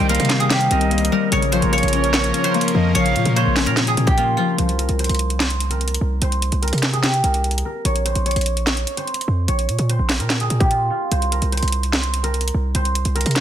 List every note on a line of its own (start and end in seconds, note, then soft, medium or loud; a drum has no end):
0.00 0.19 C2 loud
0.00 1.37 D#3 medium
0.00 1.10 G3 medium
0.00 1.29 G3 medium
0.00 0.30 C4 medium
0.00 1.29 C4 medium
0.00 0.50 D#4 medium
0.00 1.29 D#4 medium
0.00 0.36 F4 medium
0.00 1.28 A#4 medium
0.00 1.38 C5 loud
0.09 0.91 A#3 medium
0.09 0.71 A#4 medium
0.09 0.67 F5 medium
0.09 closed hi-hat medium
0.15 closed hi-hat medium
0.20 0.69 C3 loud
0.20 closed hi-hat medium
0.25 closed hi-hat medium
0.30 0.70 C4 loud
0.30 snare loud
0.30 clap medium
0.30 closed hi-hat medium
0.40 0.57 G#4 medium
0.40 closed hi-hat medium
0.50 3.21 D#4 medium
0.50 2.86 G4 medium
0.50 snare loud
0.50 clap loud
0.50 closed hi-hat medium
0.61 closed hi-hat medium
0.70 1.10 C2 loud
0.70 1.38 C4 medium
0.70 1.12 A#4 medium
0.70 1.28 D#5 medium
0.70 closed hi-hat medium
0.81 closed hi-hat medium
0.91 1.72 A#3 medium
0.91 closed hi-hat soft
0.98 closed hi-hat medium
1.05 closed hi-hat medium
1.11 1.37 G3 medium
1.11 3.24 A#4 medium
1.32 1.61 A#1 loud
1.32 2.94 C#3 medium
1.32 4.55 F3 medium
1.32 4.55 A#3 medium
1.32 4.55 C#4 medium
1.32 4.55 A#4 medium
1.32 1.58 C#5 loud
1.32 closed hi-hat medium
1.42 closed hi-hat medium
1.52 2.73 F3 medium
1.52 1.79 C5 medium
1.52 2.71 C#5 medium
1.52 closed hi-hat medium
1.62 1.82 A#1 loud
1.62 closed hi-hat medium
1.72 2.54 A#3 medium
1.72 2.13 C#5 medium
1.72 closed hi-hat medium
1.78 closed hi-hat medium
1.83 2.32 A#1 loud
1.83 closed hi-hat medium
1.88 closed hi-hat medium
1.93 2.33 C#4 loud
1.93 closed hi-hat medium
2.04 closed hi-hat medium
2.13 4.26 A#4 medium
2.13 2.50 C#5 medium
2.13 snare loud
2.13 clap loud
2.13 closed hi-hat medium
2.24 closed hi-hat medium
2.33 3.56 C#4 medium
2.33 closed hi-hat medium
2.44 3.01 C5 medium
2.44 closed hi-hat medium
2.54 3.35 A#3 loud
2.54 closed hi-hat soft
2.61 closed hi-hat medium
2.68 closed hi-hat medium
2.75 2.94 F2 loud
2.75 3.00 F3 medium
2.75 2.94 D#5 medium
2.95 3.17 A#1 loud
2.95 4.63 C#3 medium
2.95 3.42 C#5 loud
2.95 3.33 F5 loud
2.95 closed hi-hat medium
3.06 closed hi-hat medium
3.16 3.25 A#2 loud
3.16 4.36 F3 medium
3.16 closed hi-hat medium
3.25 3.45 A#2 loud
3.25 closed hi-hat medium
3.36 4.17 A#3 medium
3.36 4.58 C5 medium
3.36 3.74 C#5 medium
3.36 closed hi-hat medium
3.46 3.68 A#1 loud
3.56 3.96 C#4 loud
3.56 snare loud
3.56 clap medium
3.56 open hi-hat medium
3.66 3.96 A#2 loud
3.66 4.78 A#4 medium
3.66 closed hi-hat medium
3.77 5.68 C#5 medium
3.77 snare loud
3.77 clap loud
3.77 closed hi-hat medium
3.87 4.13 G#4 medium
3.87 closed hi-hat medium
3.97 4.36 A#2 loud
3.97 6.87 C#4 medium
3.97 closed hi-hat medium
4.07 6.42 G4 medium
4.07 kick medium
4.07 closed hi-hat medium
4.17 7.39 A#3 loud
4.17 4.37 F4 medium
4.17 closed hi-hat medium
4.37 4.63 F3 medium
4.37 6.89 F4 medium
4.58 4.88 C2 loud
4.58 4.99 C5 medium
4.58 closed hi-hat medium
4.69 closed hi-hat medium
4.79 5.70 A#4 medium
4.79 closed hi-hat medium
4.89 5.09 C2 loud
4.89 closed hi-hat medium
4.99 5.39 C5 medium
4.99 closed hi-hat medium
5.04 closed hi-hat medium
5.09 5.98 C2 loud
5.09 closed hi-hat medium
5.15 closed hi-hat medium
5.19 closed hi-hat medium
5.30 closed hi-hat medium
5.40 6.22 C5 medium
5.40 snare loud
5.40 clap medium
5.40 closed hi-hat medium
5.50 closed hi-hat medium
5.60 closed hi-hat medium
5.70 6.62 A#4 medium
5.70 closed hi-hat medium
5.81 closed hi-hat soft
5.88 closed hi-hat medium
5.94 closed hi-hat medium
6.01 6.21 C2 loud
6.22 6.51 C2 loud
6.22 7.91 C5 loud
6.22 closed hi-hat medium
6.32 closed hi-hat medium
6.42 closed hi-hat medium
6.52 6.72 C2 loud
6.52 closed hi-hat medium
6.62 7.24 A#4 medium
6.62 closed hi-hat medium
6.68 closed hi-hat medium
6.73 7.22 C3 loud
6.73 closed hi-hat medium
6.78 closed hi-hat medium
6.83 snare loud
6.83 clap medium
6.83 closed hi-hat medium
6.93 7.10 G#4 medium
6.93 closed hi-hat medium
7.03 9.39 G4 medium
7.03 snare loud
7.03 clap loud
7.03 closed hi-hat medium
7.14 closed hi-hat medium
7.24 7.63 C2 loud
7.24 7.65 A#4 medium
7.24 closed hi-hat medium
7.34 closed hi-hat medium
7.44 closed hi-hat soft
7.51 closed hi-hat medium
7.58 closed hi-hat medium
7.65 9.77 A#4 medium
7.85 8.14 A#1 loud
7.85 8.11 C#5 loud
7.85 closed hi-hat medium
7.96 closed hi-hat medium
8.05 8.32 C5 medium
8.05 closed hi-hat medium
8.15 8.35 A#1 loud
8.15 closed hi-hat medium
8.26 8.66 C#5 medium
8.26 closed hi-hat medium
8.31 closed hi-hat medium
8.36 8.85 A#1 loud
8.36 closed hi-hat medium
8.41 closed hi-hat medium
8.46 closed hi-hat medium
8.57 closed hi-hat medium
8.67 9.03 C#5 medium
8.67 snare loud
8.67 clap loud
8.67 closed hi-hat medium
8.77 closed hi-hat medium
8.87 closed hi-hat medium
8.97 9.54 C5 medium
8.97 closed hi-hat medium
9.07 closed hi-hat soft
9.14 closed hi-hat medium
9.21 closed hi-hat medium
9.28 9.47 F2 loud
9.48 9.70 A#1 loud
9.48 9.95 C#5 medium
9.48 closed hi-hat medium
9.59 closed hi-hat soft
9.69 9.78 A#2 loud
9.69 closed hi-hat medium
9.79 9.98 A#2 loud
9.79 closed hi-hat medium
9.89 11.11 C5 medium
9.89 closed hi-hat medium
9.99 10.21 A#1 loud
10.09 snare loud
10.09 clap medium
10.09 open hi-hat medium
10.19 10.49 A#2 loud
10.19 11.31 A#4 medium
10.19 closed hi-hat medium
10.30 snare loud
10.30 clap loud
10.30 closed hi-hat medium
10.40 10.66 G#4 medium
10.40 closed hi-hat medium
10.50 10.89 A#2 loud
10.50 closed hi-hat medium
10.60 12.95 G4 medium
10.60 kick medium
10.60 closed hi-hat medium
10.71 10.90 F4 medium
10.71 closed hi-hat medium
10.90 13.40 F4 medium
11.12 11.41 C2 loud
11.12 11.52 C5 medium
11.12 closed hi-hat medium
11.22 closed hi-hat medium
11.32 12.23 A#4 medium
11.32 closed hi-hat medium
11.42 11.62 C2 loud
11.42 closed hi-hat medium
11.52 11.92 C5 medium
11.52 closed hi-hat medium
11.57 closed hi-hat medium
11.63 12.51 C2 loud
11.63 closed hi-hat medium
11.68 closed hi-hat medium
11.72 closed hi-hat medium
11.83 closed hi-hat medium
11.93 12.75 C5 medium
11.93 snare loud
11.93 clap loud
11.93 closed hi-hat medium
12.03 closed hi-hat medium
12.14 closed hi-hat medium
12.23 13.15 A#4 medium
12.23 closed hi-hat medium
12.34 closed hi-hat soft
12.41 closed hi-hat medium
12.48 closed hi-hat medium
12.54 12.74 C2 loud
12.75 13.04 C2 loud
12.75 13.40 C5 loud
12.75 closed hi-hat medium
12.85 closed hi-hat medium
12.95 closed hi-hat medium
13.05 13.25 C2 loud
13.05 closed hi-hat medium
13.15 13.40 A#4 medium
13.15 closed hi-hat medium
13.21 closed hi-hat medium
13.26 13.40 C3 loud
13.26 closed hi-hat medium
13.31 closed hi-hat medium
13.36 snare loud
13.36 clap medium
13.36 closed hi-hat medium